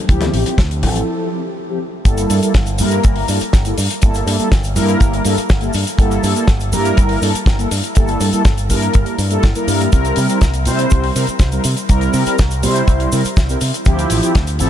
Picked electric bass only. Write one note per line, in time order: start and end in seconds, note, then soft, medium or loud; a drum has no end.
0.09 0.27 D2 loud
0.34 0.43 A1 medium
0.58 0.84 D2 loud
0.83 1.01 A1 loud
2.05 2.23 G1 loud
2.30 2.39 G2 loud
2.55 2.81 G1 loud
2.80 2.98 G2 loud
3.05 3.22 G1 medium
3.29 3.38 G2 loud
3.41 muted picked electric bass stroke soft
3.53 3.71 G1 medium
3.78 3.87 G2 medium
4.03 4.21 G1 loud
4.27 4.36 G2 loud
4.39 muted picked electric bass stroke soft
4.52 4.78 G1 loud
4.76 4.94 G2 loud
5.01 5.19 G1 medium
5.25 5.34 G2 loud
5.38 muted picked electric bass stroke soft
5.50 5.68 G1 medium
5.75 5.84 G2 medium
5.98 6.17 G1 loud
6.23 6.33 G2 medium
6.48 6.74 G1 medium
6.72 6.91 G2 loud
6.98 7.16 G1 medium
7.22 7.31 G2 loud
7.34 muted picked electric bass stroke soft
7.46 7.64 G1 loud
7.71 7.80 G2 medium
7.97 8.14 G1 loud
8.20 8.29 G2 loud
8.33 muted picked electric bass stroke soft
8.45 8.71 G1 loud
8.70 8.88 G2 loud
8.95 9.04 G1 medium
9.18 9.37 G2 medium
9.43 9.52 G1 medium
9.68 9.86 G2 medium
9.93 10.11 C2 loud
10.17 10.26 C3 loud
10.42 10.68 C2 medium
10.66 10.84 C3 loud
10.92 11.09 C2 medium
11.16 11.25 C3 medium
11.28 muted picked electric bass stroke soft
11.40 11.58 C2 medium
11.65 11.74 C3 medium
11.90 12.07 C2 loud
12.14 12.23 C3 loud
12.27 muted picked electric bass stroke soft
12.39 12.65 C2 medium
12.63 12.81 C3 loud
12.88 13.06 C2 medium
13.13 13.21 C3 loud
13.25 muted picked electric bass stroke soft
13.37 13.55 C2 medium
13.61 13.70 C3 medium
13.86 14.04 D2 loud
14.11 14.20 A1 loud
14.35 14.61 D2 medium
14.60 14.70 A1 loud